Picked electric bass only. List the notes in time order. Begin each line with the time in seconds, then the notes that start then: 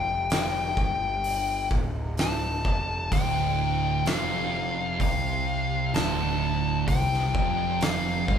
Already playing: F1
0.77 G1
1.70 D1
2.65 F1
3.11 D1
4.06 F1
5.00 C2
5.94 D1
6.88 C2
7.34 F1
8.29 G1